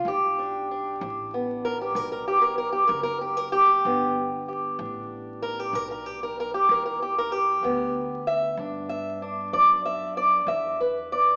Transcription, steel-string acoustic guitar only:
0, 0, Header, 1, 2, 480
1, 0, Start_track
1, 0, Key_signature, 1, "major"
1, 0, Tempo, 630915
1, 42, Time_signature, 12, 3, 24, 8
1, 8643, End_track
2, 0, Start_track
2, 0, Title_t, "Steel-string acoustic guitar"
2, 0, Program_c, 0, 25
2, 47, Note_on_c, 0, 43, 81
2, 58, Note_on_c, 0, 67, 92
2, 293, Note_on_c, 0, 62, 51
2, 476, Note_off_c, 0, 43, 0
2, 537, Note_off_c, 0, 62, 0
2, 540, Note_on_c, 0, 62, 50
2, 773, Note_on_c, 0, 43, 72
2, 778, Note_off_c, 0, 62, 0
2, 781, Note_on_c, 0, 62, 49
2, 1009, Note_off_c, 0, 67, 0
2, 1019, Note_on_c, 0, 59, 45
2, 1199, Note_off_c, 0, 43, 0
2, 1254, Note_on_c, 0, 70, 101
2, 1367, Note_off_c, 0, 70, 0
2, 1379, Note_on_c, 0, 67, 75
2, 1489, Note_on_c, 0, 43, 70
2, 1492, Note_off_c, 0, 67, 0
2, 1492, Note_on_c, 0, 70, 95
2, 1602, Note_off_c, 0, 70, 0
2, 1611, Note_on_c, 0, 70, 81
2, 1726, Note_off_c, 0, 70, 0
2, 1731, Note_on_c, 0, 67, 89
2, 1834, Note_off_c, 0, 67, 0
2, 1837, Note_on_c, 0, 70, 85
2, 1918, Note_off_c, 0, 43, 0
2, 1952, Note_off_c, 0, 70, 0
2, 1961, Note_on_c, 0, 70, 95
2, 2070, Note_off_c, 0, 70, 0
2, 2073, Note_on_c, 0, 67, 82
2, 2183, Note_off_c, 0, 67, 0
2, 2186, Note_on_c, 0, 70, 99
2, 2298, Note_off_c, 0, 70, 0
2, 2307, Note_on_c, 0, 70, 100
2, 2434, Note_off_c, 0, 70, 0
2, 2444, Note_on_c, 0, 67, 83
2, 2563, Note_off_c, 0, 67, 0
2, 2563, Note_on_c, 0, 70, 83
2, 2676, Note_off_c, 0, 70, 0
2, 2679, Note_on_c, 0, 67, 104
2, 2929, Note_on_c, 0, 43, 82
2, 2931, Note_off_c, 0, 59, 0
2, 2934, Note_on_c, 0, 59, 56
2, 3160, Note_off_c, 0, 67, 0
2, 3357, Note_off_c, 0, 43, 0
2, 3411, Note_on_c, 0, 67, 49
2, 3634, Note_off_c, 0, 62, 0
2, 3644, Note_on_c, 0, 43, 66
2, 3645, Note_on_c, 0, 62, 45
2, 4076, Note_off_c, 0, 43, 0
2, 4124, Note_off_c, 0, 67, 0
2, 4127, Note_on_c, 0, 70, 102
2, 4256, Note_off_c, 0, 70, 0
2, 4256, Note_on_c, 0, 67, 85
2, 4364, Note_on_c, 0, 43, 70
2, 4375, Note_off_c, 0, 67, 0
2, 4375, Note_on_c, 0, 70, 80
2, 4489, Note_off_c, 0, 70, 0
2, 4496, Note_on_c, 0, 70, 89
2, 4610, Note_off_c, 0, 70, 0
2, 4610, Note_on_c, 0, 67, 88
2, 4726, Note_off_c, 0, 67, 0
2, 4740, Note_on_c, 0, 70, 91
2, 4795, Note_off_c, 0, 43, 0
2, 4851, Note_off_c, 0, 70, 0
2, 4868, Note_on_c, 0, 70, 96
2, 4974, Note_off_c, 0, 70, 0
2, 4977, Note_on_c, 0, 67, 77
2, 5084, Note_on_c, 0, 43, 73
2, 5090, Note_off_c, 0, 67, 0
2, 5108, Note_on_c, 0, 70, 88
2, 5206, Note_off_c, 0, 70, 0
2, 5216, Note_on_c, 0, 70, 88
2, 5329, Note_off_c, 0, 70, 0
2, 5343, Note_on_c, 0, 67, 88
2, 5453, Note_off_c, 0, 67, 0
2, 5465, Note_on_c, 0, 70, 88
2, 5516, Note_off_c, 0, 43, 0
2, 5568, Note_off_c, 0, 70, 0
2, 5568, Note_on_c, 0, 67, 108
2, 5803, Note_on_c, 0, 43, 85
2, 5804, Note_off_c, 0, 59, 0
2, 5813, Note_on_c, 0, 59, 58
2, 6046, Note_off_c, 0, 67, 0
2, 6236, Note_off_c, 0, 43, 0
2, 6293, Note_on_c, 0, 76, 103
2, 6525, Note_off_c, 0, 62, 0
2, 6529, Note_off_c, 0, 76, 0
2, 6532, Note_on_c, 0, 43, 67
2, 6536, Note_on_c, 0, 62, 51
2, 6766, Note_on_c, 0, 76, 85
2, 6961, Note_off_c, 0, 43, 0
2, 7005, Note_off_c, 0, 76, 0
2, 7012, Note_off_c, 0, 62, 0
2, 7015, Note_on_c, 0, 62, 52
2, 7252, Note_on_c, 0, 74, 95
2, 7489, Note_off_c, 0, 74, 0
2, 7497, Note_on_c, 0, 76, 87
2, 7731, Note_off_c, 0, 76, 0
2, 7738, Note_on_c, 0, 74, 97
2, 7968, Note_on_c, 0, 43, 70
2, 7970, Note_off_c, 0, 74, 0
2, 7973, Note_on_c, 0, 76, 92
2, 8209, Note_off_c, 0, 76, 0
2, 8217, Note_off_c, 0, 62, 0
2, 8220, Note_on_c, 0, 71, 80
2, 8399, Note_off_c, 0, 43, 0
2, 8452, Note_off_c, 0, 71, 0
2, 8461, Note_on_c, 0, 74, 91
2, 8643, Note_off_c, 0, 59, 0
2, 8643, Note_off_c, 0, 74, 0
2, 8643, End_track
0, 0, End_of_file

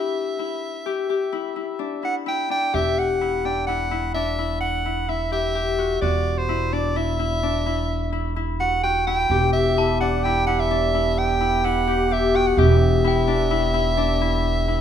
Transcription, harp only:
0, 0, Header, 1, 2, 480
1, 0, Start_track
1, 0, Key_signature, 1, "minor"
1, 0, Tempo, 468384
1, 2811, Time_signature, 7, 2, 24, 8
1, 15176, End_track
2, 0, Start_track
2, 0, Title_t, "Harp"
2, 0, Program_c, 0, 46
2, 0, Note_on_c, 0, 62, 59
2, 0, Note_on_c, 0, 64, 61
2, 0, Note_on_c, 0, 67, 52
2, 396, Note_off_c, 0, 64, 0
2, 401, Note_on_c, 0, 64, 57
2, 876, Note_off_c, 0, 67, 0
2, 880, Note_on_c, 0, 67, 64
2, 1119, Note_off_c, 0, 67, 0
2, 1123, Note_on_c, 0, 67, 57
2, 1354, Note_off_c, 0, 64, 0
2, 1358, Note_on_c, 0, 64, 64
2, 1594, Note_off_c, 0, 64, 0
2, 1598, Note_on_c, 0, 64, 52
2, 1831, Note_off_c, 0, 62, 0
2, 1835, Note_on_c, 0, 62, 56
2, 2075, Note_off_c, 0, 64, 0
2, 2079, Note_on_c, 0, 64, 50
2, 2313, Note_off_c, 0, 64, 0
2, 2317, Note_on_c, 0, 64, 60
2, 2557, Note_off_c, 0, 62, 0
2, 2561, Note_on_c, 0, 62, 57
2, 2799, Note_off_c, 0, 67, 0
2, 2803, Note_on_c, 0, 67, 67
2, 3287, Note_off_c, 0, 64, 0
2, 3291, Note_on_c, 0, 64, 65
2, 3530, Note_off_c, 0, 62, 0
2, 3534, Note_on_c, 0, 62, 61
2, 3768, Note_off_c, 0, 64, 0
2, 3773, Note_on_c, 0, 64, 66
2, 4005, Note_off_c, 0, 64, 0
2, 4009, Note_on_c, 0, 64, 64
2, 4248, Note_off_c, 0, 62, 0
2, 4252, Note_on_c, 0, 62, 64
2, 4491, Note_off_c, 0, 64, 0
2, 4495, Note_on_c, 0, 64, 59
2, 4973, Note_off_c, 0, 64, 0
2, 4977, Note_on_c, 0, 64, 58
2, 5209, Note_off_c, 0, 64, 0
2, 5213, Note_on_c, 0, 64, 54
2, 5215, Note_off_c, 0, 67, 0
2, 5449, Note_on_c, 0, 67, 58
2, 5684, Note_off_c, 0, 67, 0
2, 5688, Note_on_c, 0, 67, 57
2, 5928, Note_on_c, 0, 66, 58
2, 5990, Note_off_c, 0, 67, 0
2, 6166, Note_off_c, 0, 66, 0
2, 6170, Note_on_c, 0, 66, 69
2, 6645, Note_off_c, 0, 64, 0
2, 6649, Note_on_c, 0, 64, 64
2, 6889, Note_off_c, 0, 62, 0
2, 6893, Note_on_c, 0, 62, 64
2, 7128, Note_off_c, 0, 64, 0
2, 7132, Note_on_c, 0, 64, 66
2, 7368, Note_off_c, 0, 64, 0
2, 7372, Note_on_c, 0, 64, 67
2, 7610, Note_off_c, 0, 62, 0
2, 7614, Note_on_c, 0, 62, 64
2, 7848, Note_off_c, 0, 64, 0
2, 7852, Note_on_c, 0, 64, 67
2, 8321, Note_off_c, 0, 64, 0
2, 8326, Note_on_c, 0, 64, 60
2, 8567, Note_off_c, 0, 64, 0
2, 8571, Note_on_c, 0, 64, 61
2, 8667, Note_off_c, 0, 66, 0
2, 8818, Note_on_c, 0, 66, 58
2, 9051, Note_off_c, 0, 66, 0
2, 9056, Note_on_c, 0, 66, 61
2, 9293, Note_off_c, 0, 64, 0
2, 9297, Note_on_c, 0, 64, 68
2, 9539, Note_on_c, 0, 67, 73
2, 9601, Note_off_c, 0, 66, 0
2, 10014, Note_off_c, 0, 64, 0
2, 10018, Note_on_c, 0, 64, 69
2, 10255, Note_off_c, 0, 62, 0
2, 10259, Note_on_c, 0, 62, 71
2, 10501, Note_off_c, 0, 64, 0
2, 10505, Note_on_c, 0, 64, 70
2, 10731, Note_off_c, 0, 64, 0
2, 10735, Note_on_c, 0, 64, 71
2, 10970, Note_off_c, 0, 62, 0
2, 10974, Note_on_c, 0, 62, 70
2, 11213, Note_off_c, 0, 64, 0
2, 11217, Note_on_c, 0, 64, 65
2, 11685, Note_off_c, 0, 64, 0
2, 11689, Note_on_c, 0, 64, 65
2, 11924, Note_off_c, 0, 64, 0
2, 11928, Note_on_c, 0, 64, 65
2, 11951, Note_off_c, 0, 67, 0
2, 12170, Note_on_c, 0, 67, 60
2, 12408, Note_off_c, 0, 67, 0
2, 12412, Note_on_c, 0, 67, 67
2, 12652, Note_on_c, 0, 66, 66
2, 12713, Note_off_c, 0, 67, 0
2, 12894, Note_on_c, 0, 67, 79
2, 12956, Note_off_c, 0, 66, 0
2, 13363, Note_off_c, 0, 64, 0
2, 13367, Note_on_c, 0, 64, 72
2, 13600, Note_off_c, 0, 62, 0
2, 13604, Note_on_c, 0, 62, 73
2, 13838, Note_off_c, 0, 64, 0
2, 13842, Note_on_c, 0, 64, 71
2, 14076, Note_off_c, 0, 64, 0
2, 14080, Note_on_c, 0, 64, 72
2, 14315, Note_off_c, 0, 62, 0
2, 14319, Note_on_c, 0, 62, 76
2, 14563, Note_off_c, 0, 64, 0
2, 14567, Note_on_c, 0, 64, 74
2, 15041, Note_off_c, 0, 64, 0
2, 15045, Note_on_c, 0, 64, 65
2, 15176, Note_off_c, 0, 62, 0
2, 15176, Note_off_c, 0, 64, 0
2, 15176, Note_off_c, 0, 67, 0
2, 15176, End_track
0, 0, End_of_file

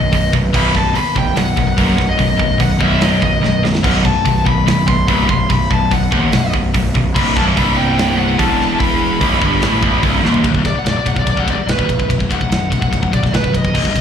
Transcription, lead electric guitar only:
0, 0, Header, 1, 2, 480
1, 0, Start_track
1, 0, Tempo, 412939
1, 624, Time_signature, 4, 2, 24, 8
1, 16284, End_track
2, 0, Start_track
2, 0, Title_t, "Lead electric guitar"
2, 0, Program_c, 0, 29
2, 0, Note_on_c, 0, 75, 92
2, 358, Note_off_c, 0, 75, 0
2, 654, Note_on_c, 0, 83, 96
2, 883, Note_off_c, 0, 83, 0
2, 888, Note_on_c, 0, 81, 100
2, 1117, Note_off_c, 0, 81, 0
2, 1122, Note_on_c, 0, 83, 91
2, 1362, Note_off_c, 0, 83, 0
2, 1366, Note_on_c, 0, 79, 99
2, 1581, Note_off_c, 0, 79, 0
2, 1597, Note_on_c, 0, 78, 98
2, 1928, Note_off_c, 0, 78, 0
2, 1948, Note_on_c, 0, 78, 92
2, 2395, Note_off_c, 0, 78, 0
2, 2428, Note_on_c, 0, 75, 91
2, 3026, Note_on_c, 0, 78, 88
2, 3048, Note_off_c, 0, 75, 0
2, 3276, Note_off_c, 0, 78, 0
2, 3285, Note_on_c, 0, 76, 96
2, 3502, Note_off_c, 0, 76, 0
2, 3519, Note_on_c, 0, 75, 99
2, 3739, Note_off_c, 0, 75, 0
2, 3758, Note_on_c, 0, 75, 106
2, 4202, Note_off_c, 0, 75, 0
2, 4463, Note_on_c, 0, 78, 90
2, 4691, Note_off_c, 0, 78, 0
2, 4708, Note_on_c, 0, 81, 102
2, 5186, Note_off_c, 0, 81, 0
2, 5190, Note_on_c, 0, 83, 107
2, 5414, Note_off_c, 0, 83, 0
2, 5428, Note_on_c, 0, 83, 110
2, 5661, Note_off_c, 0, 83, 0
2, 5665, Note_on_c, 0, 84, 114
2, 5904, Note_off_c, 0, 84, 0
2, 5909, Note_on_c, 0, 83, 110
2, 6152, Note_off_c, 0, 83, 0
2, 6157, Note_on_c, 0, 84, 99
2, 6389, Note_off_c, 0, 84, 0
2, 6394, Note_on_c, 0, 83, 100
2, 6640, Note_off_c, 0, 83, 0
2, 6647, Note_on_c, 0, 81, 101
2, 6886, Note_off_c, 0, 81, 0
2, 6891, Note_on_c, 0, 78, 83
2, 7554, Note_off_c, 0, 78, 0
2, 8308, Note_on_c, 0, 83, 106
2, 8555, Note_off_c, 0, 83, 0
2, 8563, Note_on_c, 0, 81, 105
2, 8626, Note_off_c, 0, 81, 0
2, 8809, Note_on_c, 0, 83, 94
2, 9029, Note_on_c, 0, 79, 97
2, 9045, Note_off_c, 0, 83, 0
2, 9508, Note_off_c, 0, 79, 0
2, 9513, Note_on_c, 0, 78, 89
2, 9749, Note_on_c, 0, 81, 99
2, 9755, Note_off_c, 0, 78, 0
2, 10219, Note_off_c, 0, 81, 0
2, 10224, Note_on_c, 0, 83, 94
2, 11614, Note_off_c, 0, 83, 0
2, 12400, Note_on_c, 0, 74, 96
2, 12506, Note_off_c, 0, 74, 0
2, 12537, Note_on_c, 0, 78, 85
2, 12635, Note_off_c, 0, 78, 0
2, 12645, Note_on_c, 0, 74, 73
2, 12749, Note_off_c, 0, 74, 0
2, 12764, Note_on_c, 0, 74, 85
2, 12868, Note_off_c, 0, 74, 0
2, 12875, Note_on_c, 0, 78, 78
2, 12983, Note_off_c, 0, 78, 0
2, 13009, Note_on_c, 0, 74, 74
2, 13110, Note_off_c, 0, 74, 0
2, 13137, Note_on_c, 0, 74, 89
2, 13235, Note_off_c, 0, 74, 0
2, 13244, Note_on_c, 0, 78, 77
2, 13348, Note_off_c, 0, 78, 0
2, 13372, Note_on_c, 0, 74, 88
2, 13588, Note_off_c, 0, 74, 0
2, 13602, Note_on_c, 0, 71, 83
2, 14056, Note_off_c, 0, 71, 0
2, 14320, Note_on_c, 0, 78, 103
2, 15240, Note_off_c, 0, 78, 0
2, 15275, Note_on_c, 0, 74, 89
2, 15499, Note_off_c, 0, 74, 0
2, 15512, Note_on_c, 0, 71, 81
2, 15737, Note_off_c, 0, 71, 0
2, 15764, Note_on_c, 0, 75, 92
2, 16284, Note_off_c, 0, 75, 0
2, 16284, End_track
0, 0, End_of_file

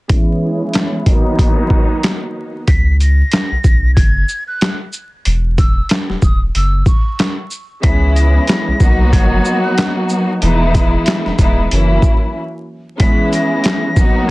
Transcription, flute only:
0, 0, Header, 1, 2, 480
1, 0, Start_track
1, 0, Tempo, 645161
1, 73, Time_signature, 4, 2, 24, 8
1, 10643, End_track
2, 0, Start_track
2, 0, Title_t, "Flute"
2, 0, Program_c, 0, 73
2, 1992, Note_on_c, 0, 95, 109
2, 2208, Note_off_c, 0, 95, 0
2, 2251, Note_on_c, 0, 94, 90
2, 2932, Note_off_c, 0, 94, 0
2, 2939, Note_on_c, 0, 92, 83
2, 3301, Note_off_c, 0, 92, 0
2, 3330, Note_on_c, 0, 90, 81
2, 3547, Note_off_c, 0, 90, 0
2, 4155, Note_on_c, 0, 88, 87
2, 4370, Note_off_c, 0, 88, 0
2, 4641, Note_on_c, 0, 87, 78
2, 4762, Note_off_c, 0, 87, 0
2, 4885, Note_on_c, 0, 88, 101
2, 5096, Note_off_c, 0, 88, 0
2, 5114, Note_on_c, 0, 85, 76
2, 5469, Note_off_c, 0, 85, 0
2, 5826, Note_on_c, 0, 95, 108
2, 6045, Note_off_c, 0, 95, 0
2, 6067, Note_on_c, 0, 94, 84
2, 6760, Note_off_c, 0, 94, 0
2, 6789, Note_on_c, 0, 92, 83
2, 7147, Note_off_c, 0, 92, 0
2, 7170, Note_on_c, 0, 90, 80
2, 7387, Note_off_c, 0, 90, 0
2, 9672, Note_on_c, 0, 95, 107
2, 9888, Note_off_c, 0, 95, 0
2, 9931, Note_on_c, 0, 94, 87
2, 10612, Note_off_c, 0, 94, 0
2, 10620, Note_on_c, 0, 92, 85
2, 10643, Note_off_c, 0, 92, 0
2, 10643, End_track
0, 0, End_of_file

